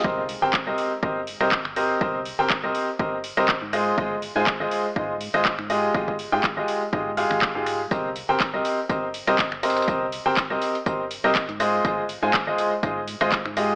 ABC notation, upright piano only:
X:1
M:4/4
L:1/16
Q:"Swing 16ths" 1/4=122
K:Cm
V:1 name="Upright piano"
[CGBce] z2 [CGBcg] z [CGBce]2 z [CGBce] z2 [CGBce] z2 [CGBce]2 | [CGBce] z2 [CGBcg] z [CGBce]2 z [CGBce] z2 [CGBce] z2 [A,FAce]2 | [A,FAce] z2 [A,FAca] z [A,FAce]2 z [A,FAce] z2 [A,FAce] z2 [A,FGAe]2 | [A,FGAe] z2 [A,FGAg] z [A,FGAe]2 z [A,FGAe] z [A,FGAf]3 [A,FGAf]2 z |
[CGBce] z2 [CGBcg] z [CGBce]2 z [CGBce] z2 [CGBce] z2 [CGBce]2 | [CGBce] z2 [CGBcg] z [CGBce]2 z [CGBce] z2 [CGBce] z2 [A,FAce]2 | [A,FAce] z2 [A,FAca] z [A,FAce]2 z [A,FAce] z2 [A,FAce] z2 [A,FGAe]2 |]